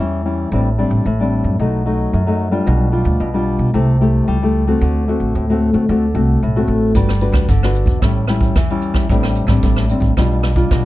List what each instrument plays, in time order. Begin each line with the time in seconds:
0.00 upright bass E2, nylon-string guitar E3 G3 C#4 E4
0.25 nylon-string guitar G3 C#4 E4
0.52 upright bass A1, nylon-string guitar A2 G3 C4 D4
0.78 nylon-string guitar G3 C4 D4
0.90 upright bass A1
1.06 upright bass A1, nylon-string guitar A2
1.20 nylon-string guitar G3 C4 D4
1.44 upright bass F#2
1.59 upright bass B1, nylon-string guitar B2 F#3 A3 D#4
1.86 nylon-string guitar F#3 A3 D#4
2.13 upright bass F#2, nylon-string guitar F#2
2.27 nylon-string guitar F#3 A3 D#4
2.51 nylon-string guitar G3 D4 F4
2.66 upright bass B1, nylon-string guitar B2
2.92 nylon-string guitar G3 D4 F4
3.05 upright bass D2
3.20 upright bass B1, nylon-string guitar B2
3.34 nylon-string guitar G3 D4 F4
3.59 upright bass B2
3.74 upright bass C2, nylon-string guitar C3 A3 E4 G4
4.01 nylon-string guitar A3 E4 G4
4.28 upright bass C#2, nylon-string guitar G3
4.42 nylon-string guitar A3 E4 G4
4.67 nylon-string guitar A3 C4 F#4
4.81 upright bass D2, nylon-string guitar D3
5.08 nylon-string guitar A3 C4 F#4
5.20 upright bass A1
5.35 upright bass D2, nylon-string guitar A2
5.50 nylon-string guitar A3 C4 F#4
5.73 upright bass D3, nylon-string guitar A3 C4 F#4
5.89 upright bass D2, nylon-string guitar D3 A3 C4 F#4
6.15 upright bass C2, nylon-string guitar A3 C4 F#4
6.43 upright bass B1, nylon-string guitar A2
6.56 nylon-string guitar A3 C4 F#4
6.68 upright bass A1
6.95 upright bass G1, nylon-string guitar G3 D4 F#4 B4, kick, closed hi-hat
7.09 cross-stick, closed hi-hat
7.21 nylon-string guitar D4 F#4 B4, closed hi-hat
7.32 upright bass D2, kick, cross-stick, closed hi-hat
7.49 upright bass G1, nylon-string guitar D3, kick, closed hi-hat
7.63 nylon-string guitar D4 F#4 B4, cross-stick
7.75 closed hi-hat
7.86 upright bass E2, kick
8.02 upright bass A1, nylon-string guitar A2 G3 C#4 E4, kick, cross-stick, closed hi-hat
8.28 nylon-string guitar G3 C#4 E4, cross-stick, closed hi-hat
8.40 kick, closed hi-hat
8.56 upright bass E2, nylon-string guitar E3, kick, cross-stick, closed hi-hat
8.70 nylon-string guitar G3 C#4 E4, closed hi-hat
8.82 closed hi-hat
8.94 kick, cross-stick, closed hi-hat
9.09 upright bass A1, nylon-string guitar A2 G3 C4 D4, kick, closed hi-hat
9.23 cross-stick, closed hi-hat
9.35 closed hi-hat
9.47 upright bass A1, nylon-string guitar G3 C4 D4, kick, cross-stick
9.62 upright bass A1, nylon-string guitar A2, kick, closed hi-hat
9.76 cross-stick, closed hi-hat
9.89 nylon-string guitar G3 C4 D4, closed hi-hat
10.00 upright bass A1, kick
10.17 upright bass B1, nylon-string guitar B2 G3 D4 F4, kick, cross-stick, closed hi-hat
10.31 closed hi-hat
10.43 cross-stick, closed hi-hat
10.56 nylon-string guitar G3 D4 F4, kick
10.71 upright bass B1, nylon-string guitar B2, kick, cross-stick, closed hi-hat